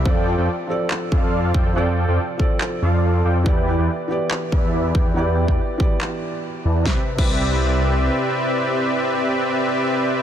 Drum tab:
CC |----------------|----------------|----------------|----------------|
CP |--------x-------|--------x-------|--------x-------|--------x-------|
SD |----------------|----------------|----------------|----------------|
BD |o---------o---o-|------o---------|o---------o---o-|---o--o---------|

CC |---x------------|----------------|
CP |----------------|----------------|
SD |o---------------|----------------|
BD |o--o------------|----------------|